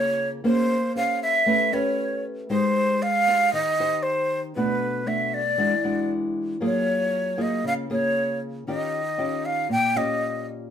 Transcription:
Already playing: C#3 A#3 F4 G#4 C#5
0.44 A#3 C#4 G#4 C5
0.96 C#4 G#4 C5 F5
1.23 E5
1.46 A3 C#4 G4 B4
1.72 C#4 G4 B4 C#5
2.50 G#3 D#4 G4 C5
3.02 F5
3.27 D#4 G4 C5
3.53 D#3 D#5
3.80 D#4 G4 C5
4.03 C5
4.55 B2 A3 D4 F#4 B4
5.06 A3 D4 F#4 E5
5.34 D5
5.58 E3 G#3 D4 F#4
5.84 G#3 D4 F#4
6.61 F#3 A#3 F4 G#4
6.65 C#5
7.37 A#3 F4 G#4
7.41 D#5
7.64 C#3 F5
7.90 A#3 F4 G#4 C#5
8.67 D#3 C#4 F4 G4 D#5
9.18 C#4 F4 G4
9.45 F5
9.69 A#2 G5
9.95 C#4 F4 G4 D#5

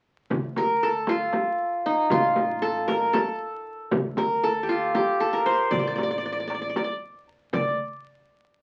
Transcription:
0.30 D2, frame drum, darbuka dum
0.56 A#4, darbuka tek, frame drum
0.83 A4
1.07 F4, darbuka tek, frame drum
1.33 darbuka tek, frame drum
1.86 D#4
2.10 A1 F4, frame drum, darbuka dum
2.36 darbuka tek, frame drum
2.62 A4, darbuka ka
2.88 A#4, darbuka tek, frame drum
3.13 A4, darbuka tek, frame drum
3.91 D2, frame drum, darbuka dum
4.17 A#4, darbuka tek, frame drum
4.43 A4
4.63 G4
4.69 F4
4.95 G4, darbuka tek, frame drum
5.20 A4
5.33 A#4
5.46 C5
5.71 A1 D5, frame drum, darbuka dum
5.79 D5
5.86 D5, darbuka ka
5.95 D5, darbuka tek, frame drum
6.03 D5
6.11 D5
6.18 D5
6.25 D5, darbuka ka
6.32 D5
6.40 D5
6.47 D5, darbuka tek
6.54 D5
6.61 D5
6.69 D5
6.76 D5, darbuka tek, frame drum
6.84 D5
7.02 darbuka ka
7.28 darbuka ka
7.53 D2 D5, frame drum, darbuka dum

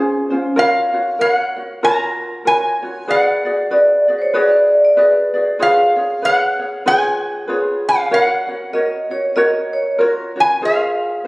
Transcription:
Already playing: C#4 F4 G#4 C5
0.30 C#4 F4 C5
0.56 F4 F#4 A#4 C#5 F5
0.93 F4 F#4 C#5
1.19 F#4 A#4 C#5 F5
1.32 F#5
1.56 F#4 C#5
1.83 F4 F#4 A#4 C#5 A#5
2.45 F4 F#4 A#4 C#5 G#5
2.82 F4 F#4 C#5
3.08 F#4 G#4 B4 D5 F#5
3.45 F#4 G#4 D5
3.71 F#4 G#4 B4 D5
4.08 F#4 G#4 D5
4.19 C5 C#5
4.34 F#4 G#4 B4 D5
4.50 F5
4.85 D5
4.97 F#4 G#4 B4 D5
5.34 F#4 G#4 D5
5.59 F4 G#4 B4 C#5 F5
5.96 F4 G#4 C#5
6.22 G#4 B4 C#5 F#5
6.59 G#4 C#5
6.86 F4 G#4 B4 C#5 G#5
7.48 F4 G#4 B4 C#5
7.89 F5
8.11 F#4 A#4 C#5 F#5
8.48 F#4 C#5
8.73 F#4 A#4 C#5 D#5
9.10 F#4 C#5
9.36 F#4 A#4 C#5 D#5
9.73 C#5
9.98 F4 F#4 A#4 C#5
10.36 F4 F#4 C#5
10.40 G#5
10.62 F4 G#4 C5 C#5 F5

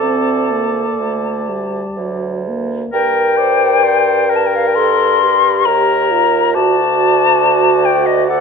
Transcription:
Already playing: A4 D5 A5
0.00 D2 C4
0.51 A#3
0.99 D2 A3
1.49 G3
1.97 D2 F#3
2.48 A#3
2.93 G2 A#4 G5
3.37 C5 D5
3.84 C5 D5
4.29 A#4
4.36 A5
4.47 G5
4.56 F5
4.67 G5
4.75 A4 C6
5.22 G4
5.65 D#2 G4 A#4 A#5
6.11 F4
6.54 D2 F#4 D5 A5
7.43 F#4
7.85 G5
8.06 D#5
8.28 A4 D5 F#5

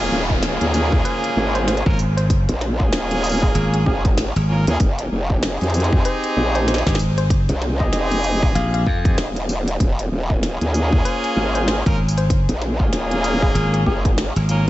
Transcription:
Already playing: A#3 C#4 F4 G#4, downlifter
0.12 D#1
0.30 A#3 C#4 F4 G#4, kick
0.43 snare, closed hi-hat
0.61 D#2, closed hi-hat
0.74 tambourine
0.92 kick
1.05 C5, closed hi-hat
1.24 closed hi-hat
1.36 G#1
1.55 C5, closed hi-hat
1.67 C5, snare, closed hi-hat
1.77 closed hi-hat
1.86 G#1 A#3 C#4 F4 A#4, kick
1.99 tambourine
2.17 C5, closed hi-hat
2.28 G1, kick, closed hi-hat
2.49 A#1, closed hi-hat
2.61 snare
2.80 A#3 C#4 F4 G#4, kick
2.93 D#1, snare, closed hi-hat
3.11 closed hi-hat
3.24 G#4, tambourine
3.26 tambourine
3.29 tambourine
3.32 tambourine
3.35 tambourine
3.37 tambourine
3.40 G#4, kick, tambourine
3.55 G#1 G#4, closed hi-hat
3.74 G#4, closed hi-hat
3.86 G#1 A#3 C#4 F4 G#4, kick
4.05 kick, closed hi-hat
4.18 snare, closed hi-hat
4.36 G#1, closed hi-hat
4.49 A#3 C#4 F4 A#4
4.67 D#2 A#3 C#4 F4 G#4, closed hi-hat
4.80 F1, kick, closed hi-hat
4.99 closed hi-hat
5.12 F1
5.30 C4 D#4 G4 G#4, kick
5.43 snare, closed hi-hat
5.61 F2, closed hi-hat
5.63 closed hi-hat
5.70 closed hi-hat
5.74 closed hi-hat, tambourine
5.80 closed hi-hat
5.84 closed hi-hat
5.93 kick
6.05 C5, closed hi-hat
6.24 closed hi-hat
6.37 A#1
6.55 C5, closed hi-hat
6.68 C5, snare, closed hi-hat
6.74 snare
6.78 snare
6.86 G#1 C4 D#4 G4 G#4, kick, snare, closed hi-hat
6.89 snare
6.95 snare
6.99 tambourine
7.18 C5, closed hi-hat
7.28 G1, kick, closed hi-hat
7.49 C2, closed hi-hat
7.62 snare
7.80 C4 D#4 G4 G#4 D#5, kick
7.92 F1 D#5, snare, closed hi-hat
8.12 closed hi-hat
8.24 tambourine
8.43 kick
8.55 A#1 F5, closed hi-hat
8.74 F5, closed hi-hat
8.86 F2, kick
9.05 C4 D#4 G4 G#4, kick, closed hi-hat
9.18 D#1, snare, closed hi-hat
9.36 closed hi-hat
9.49 tambourine
9.68 closed hi-hat
9.80 D#1, kick, closed hi-hat
9.99 closed hi-hat
10.11 D#1
10.30 A#3 C#4 F4 G#4, kick
10.43 snare, closed hi-hat
10.61 D#2, closed hi-hat
10.74 tambourine
10.93 kick
11.05 C5, closed hi-hat
11.24 closed hi-hat
11.37 G#1
11.55 C5, closed hi-hat
11.67 C5, snare, closed hi-hat
11.86 G#1 A#3 C#4 F4 A#4, kick, closed hi-hat
12.08 tambourine
12.18 C5, closed hi-hat
12.28 G1, kick, closed hi-hat
12.49 A#1, closed hi-hat
12.62 snare
12.80 A#3 C#4 F4 G#4, kick
12.93 D#1, snare, closed hi-hat
13.11 closed hi-hat
13.23 G#4, tambourine
13.42 G#4, kick
13.55 G#1 G#4, closed hi-hat
13.73 G#4, closed hi-hat
13.86 G#1 A#3 C#4 F4 G#4, kick
14.05 kick, closed hi-hat
14.18 snare, closed hi-hat
14.36 G#1, closed hi-hat
14.49 A#3 C#4 F4 A#4, tambourine

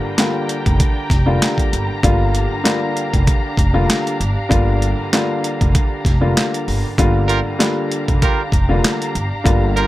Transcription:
Already playing: D3 G3 A#3 D4 F4 G4 G5 A#5
0.18 D3 G3 A#3 F4, snare, clap, closed hi-hat
0.49 closed hi-hat
0.66 F1, kick, closed hi-hat
0.80 kick, closed hi-hat
1.10 F1, kick, snare, closed hi-hat
1.26 D3 G3 A#3 F4
1.42 snare, clap, closed hi-hat
1.58 kick, closed hi-hat
1.73 G1, closed hi-hat
2.03 G1 D3 G3 A#3 D4 F4 F5, kick, closed hi-hat
2.35 closed hi-hat
2.64 D3 G3 A#3 F4, snare, clap, closed hi-hat
2.97 closed hi-hat
3.14 F1, kick, closed hi-hat
3.27 kick, closed hi-hat
3.57 F1, kick, closed hi-hat
3.74 D3 G3 A#3 F4
3.90 snare, clap, closed hi-hat
4.07 closed hi-hat
4.20 G1, closed hi-hat
4.49 G1 D3 G3 A#3 F4, kick, closed hi-hat
4.82 closed hi-hat
5.13 D3 G3 A#3 F4, snare, clap, closed hi-hat
5.44 closed hi-hat
5.61 F1, kick, closed hi-hat
5.75 kick, closed hi-hat
6.05 F1, kick, snare, closed hi-hat
6.21 D3 G3 A#3 F4
6.37 snare, clap, closed hi-hat
6.54 closed hi-hat
6.68 G1, open hi-hat
6.97 G1 D3 G3 A#3 D4 F4 G4 F5 A#5, kick, closed hi-hat
7.28 F4 G4 A#4, closed hi-hat
7.59 D3 G3 A#3 F4, snare, clap, closed hi-hat
7.92 closed hi-hat
8.08 F1, kick, closed hi-hat
8.22 F4 G4 A#4, kick, closed hi-hat
8.52 F1, kick, closed hi-hat
8.69 D3 G3 A#3 F4
8.84 snare, clap, closed hi-hat
9.02 closed hi-hat
9.15 G1, closed hi-hat
9.44 G1 D3 G3 A#3 F4, kick, closed hi-hat
9.76 F4 G4 A#4, closed hi-hat

